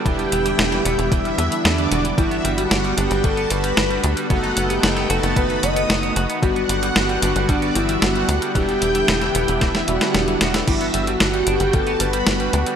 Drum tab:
CC |----------------|----------------|----------------|----------------|
HH |xxxxxxxxxxxxxxxx|xxxxxxxxxxxxxxxx|xxxxxxxxxxxxxxxx|xxxxxxxxxxxxxxxx|
SD |----oo------o---|----o-------o---|----oo------o---|----o-------o---|
BD |o-------o-------|o-------o-------|o-------o-------|o-------o-------|

CC |----------------|x---------------|
HH |xxxxxxxxxxxxxxxx|xxxxxxxxxxxxxxxx|
SD |----oo--oo-oo-oo|----o-------o---|
BD |o-------o-------|o-------o-------|